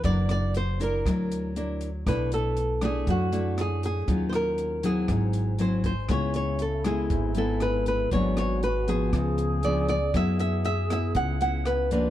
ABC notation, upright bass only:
X:1
M:4/4
L:1/8
Q:1/4=119
K:F#m
V:1 name="Upright bass" clef=bass
F,,,4 D,,4 | B,,,4 F,,4 | ^D,,4 G,,,4 | C,,4 G,,,4 |
G,,,4 C,,4 | F,,4 C,,4 |]